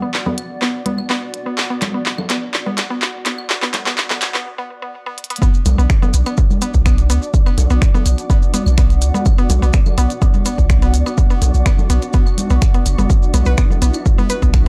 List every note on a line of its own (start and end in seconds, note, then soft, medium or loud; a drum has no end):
0.00 4.46 B3 medium
0.00 0.05 B3 medium
0.00 4.46 F#4 medium
0.00 4.46 D5 medium
0.00 4.46 F#5 medium
0.14 clap medium
0.26 0.29 B3 medium
0.26 low conga medium
0.38 closed hi-hat loud
0.38 claves medium
0.62 0.65 B3 medium
0.62 clap medium
0.86 0.89 B3 medium
0.86 closed hi-hat medium
0.86 high conga medium
0.98 claves medium
1.10 1.13 B3 medium
1.10 clap medium
1.34 closed hi-hat medium
1.46 1.49 B3 medium
1.58 clap medium
1.58 claves medium
1.70 1.73 B3 medium
1.82 clap medium
1.82 closed hi-hat loud
1.82 high conga medium
1.82 low conga medium
1.94 1.97 B3 medium
2.06 clap medium
2.18 low conga medium
2.18 claves medium
2.30 2.33 B3 medium
2.30 clap medium
2.30 closed hi-hat loud
2.54 clap medium
2.66 2.69 B3 medium
2.66 high conga medium
2.78 clap medium
2.78 closed hi-hat loud
2.78 claves medium
2.90 2.93 B3 medium
3.02 clap medium
3.26 3.29 B3 medium
3.26 clap medium
3.26 closed hi-hat loud
3.38 claves medium
3.50 clap medium
3.62 3.65 B3 medium
3.62 clap medium
3.74 clap loud
3.74 closed hi-hat loud
3.74 high conga medium
3.74 low conga medium
3.86 3.89 B3 medium
3.86 clap medium
3.98 clap medium
3.98 claves medium
4.10 4.13 B3 medium
4.10 clap medium
4.10 low conga medium
4.22 clap loud
4.22 closed hi-hat loud
4.34 4.37 B3 medium
4.34 clap medium
4.58 4.61 B3 medium
4.82 4.85 B3 medium
5.06 5.09 B3 medium
5.18 closed hi-hat medium
5.24 closed hi-hat medium
5.30 5.33 B3 medium
5.30 closed hi-hat medium
5.36 closed hi-hat medium
5.42 5.45 B3 medium
5.42 14.68 B3 medium
5.42 14.68 D4 medium
5.42 13.12 D5 medium
5.42 kick loud
5.42 maracas medium
5.54 14.68 F#4 medium
5.54 maracas soft
5.65 5.75 B1 loud
5.65 closed hi-hat medium
5.65 high conga medium
5.65 low conga medium
5.65 claves medium
5.65 maracas medium
5.78 5.87 B1 medium
5.78 5.81 B3 medium
5.78 13.50 F#5 medium
5.78 maracas soft
5.90 finger snap loud
5.90 kick loud
5.90 maracas medium
6.02 6.05 B3 medium
6.02 low conga medium
6.02 maracas soft
6.14 6.23 B1 medium
6.14 closed hi-hat loud
6.14 maracas medium
6.26 6.29 B3 medium
6.26 closed hi-hat soft
6.26 claves medium
6.26 maracas soft
6.37 kick loud
6.37 maracas soft
6.50 high conga medium
6.50 maracas soft
6.62 6.65 B3 medium
6.62 closed hi-hat medium
6.62 maracas loud
6.74 7.11 B1 loud
6.74 kick medium
6.74 maracas soft
6.86 6.89 B3 medium
6.86 finger snap loud
6.86 kick loud
6.86 claves medium
6.86 maracas medium
6.98 closed hi-hat soft
6.98 maracas soft
7.10 7.19 D2 medium
7.10 7.13 B3 medium
7.10 closed hi-hat medium
7.10 maracas medium
7.22 maracas soft
7.34 kick loud
7.34 maracas medium
7.46 7.49 B3 medium
7.46 claves medium
7.46 maracas soft
7.58 7.67 B1 loud
7.58 closed hi-hat medium
7.58 low conga medium
7.58 maracas medium
7.70 7.79 B1 medium
7.70 7.73 B3 medium
7.70 maracas soft
7.82 finger snap loud
7.82 kick loud
7.82 maracas medium
7.94 7.97 B3 medium
7.94 low conga medium
7.94 maracas soft
8.06 8.15 B1 medium
8.06 closed hi-hat medium
8.06 claves medium
8.06 maracas loud
8.18 closed hi-hat soft
8.18 maracas soft
8.30 8.33 B3 medium
8.30 kick loud
8.30 maracas medium
8.42 maracas soft
8.54 8.57 B3 medium
8.54 closed hi-hat medium
8.54 high conga medium
8.54 maracas loud
8.66 9.03 B1 loud
8.66 claves medium
8.66 maracas soft
8.78 8.81 B3 medium
8.78 finger snap loud
8.78 kick loud
8.78 maracas medium
8.90 closed hi-hat soft
8.90 maracas soft
9.02 9.11 D2 medium
9.02 closed hi-hat loud
9.02 maracas loud
9.14 9.17 B3 medium
9.14 high conga medium
9.14 maracas soft
9.26 kick loud
9.26 claves medium
9.26 maracas medium
9.38 9.41 B3 medium
9.38 maracas soft
9.50 9.59 B1 loud
9.50 closed hi-hat medium
9.50 high conga medium
9.50 low conga medium
9.50 maracas loud
9.62 9.71 B1 medium
9.62 9.65 B3 medium
9.62 maracas soft
9.73 finger snap loud
9.73 kick loud
9.73 maracas medium
9.86 low conga medium
9.86 claves medium
9.86 maracas soft
9.98 10.07 B1 medium
9.98 10.01 B3 medium
9.98 closed hi-hat loud
9.98 maracas medium
10.10 closed hi-hat soft
10.10 maracas soft
10.22 10.25 B3 medium
10.22 kick loud
10.22 maracas medium
10.34 high conga medium
10.34 maracas soft
10.45 10.49 B3 medium
10.45 closed hi-hat loud
10.45 claves medium
10.45 maracas loud
10.58 10.95 B1 medium
10.58 kick medium
10.58 maracas soft
10.70 finger snap loud
10.70 kick loud
10.70 maracas medium
10.82 10.85 B3 medium
10.82 closed hi-hat soft
10.82 maracas soft
10.94 11.03 D2 medium
10.94 closed hi-hat loud
10.94 maracas loud
11.06 11.09 B3 medium
11.06 claves medium
11.06 maracas soft
11.18 kick loud
11.18 maracas medium
11.30 11.33 B3 medium
11.30 maracas soft
11.42 11.51 B1 medium
11.42 closed hi-hat loud
11.42 low conga medium
11.42 maracas medium
11.54 11.63 B1 medium
11.54 maracas soft
11.66 11.69 B3 medium
11.66 finger snap loud
11.66 kick loud
11.66 claves medium
11.66 maracas medium
11.78 low conga medium
11.78 maracas soft
11.90 11.99 B1 medium
11.90 11.93 B3 medium
11.90 closed hi-hat loud
11.90 maracas medium
12.02 closed hi-hat soft
12.02 maracas soft
12.13 12.17 B3 medium
12.13 kick loud
12.13 maracas soft
12.26 claves medium
12.26 maracas soft
12.38 closed hi-hat medium
12.38 high conga medium
12.38 maracas medium
12.50 12.59 B1 loud
12.50 12.53 B3 medium
12.50 maracas soft
12.62 finger snap medium
12.62 kick loud
12.62 maracas medium
12.74 12.77 B3 medium
12.74 closed hi-hat soft
12.74 maracas soft
12.86 12.95 F#1 medium
12.86 closed hi-hat loud
12.86 claves medium
12.86 maracas medium
12.98 13.07 F#1 medium
12.98 13.01 B3 medium
12.98 high conga medium
12.98 maracas soft
13.10 14.68 E4 medium
13.10 kick loud
13.10 maracas medium
13.23 maracas soft
13.34 13.43 B1 loud
13.34 13.37 B3 medium
13.34 closed hi-hat loud
13.34 high conga soft
13.34 low conga medium
13.34 claves medium
13.34 maracas medium
13.46 13.55 B1 medium
13.46 13.51 B4 loud
13.46 14.68 B4 medium
13.46 maracas soft
13.58 13.61 B3 medium
13.58 finger snap medium
13.58 kick loud
13.58 maracas medium
13.70 low conga medium
13.70 maracas soft
13.82 13.91 B1 medium
13.82 13.85 B3 medium
13.82 closed hi-hat medium
13.82 maracas medium
13.94 closed hi-hat soft
13.94 claves medium
13.94 maracas soft
14.06 kick loud
14.06 maracas soft
14.18 14.21 B3 medium
14.18 high conga medium
14.18 maracas soft
14.30 14.35 B4 medium
14.30 closed hi-hat medium
14.30 maracas medium
14.42 14.68 B1 loud
14.42 14.45 B3 medium
14.42 kick medium
14.42 maracas soft
14.54 finger snap medium
14.54 kick loud
14.54 claves medium
14.54 maracas medium